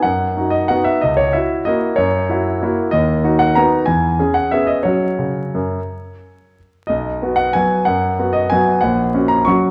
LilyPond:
\new Staff \with { instrumentName = "Grand piano" } { \time 3/4 \key b \major \tempo 4 = 186 << { fis''4. dis''8 fis''8 e''8 | dis''8 cis''8 e''4 dis''4 | cis''2~ cis''8 r8 | dis''4. fis''8 ais''4 |
gis''4. fis''8 e''8 dis''8 | cis''2.~ | cis''2 r4 | dis''4. fis''8 gis''4 |
fis''4. dis''8 gis''4 | fis''4. ais''8 cis'''4 | } \\ { fis,4 <dis' fis'>4 <b dis' fis'>4 | cis,4 <e' fis'>4 <ais e' fis'>4 | fis,4 <e' fis'>4 <ais e' fis'>4 | dis,4 <dis' fis'>4 <b dis' fis'>4 |
e,4 <cis' gis'>4 <b cis' gis'>4 | <fis cis' fis'>4 cis4 fis,4 | r2. | b,,4 <b fis'>4 <fis b fis'>4 |
fis,4 <b fis'>4 <fis b fis'>4 | ais,,4 <cis' fis'>4 <fis cis' fis'>4 | } >> }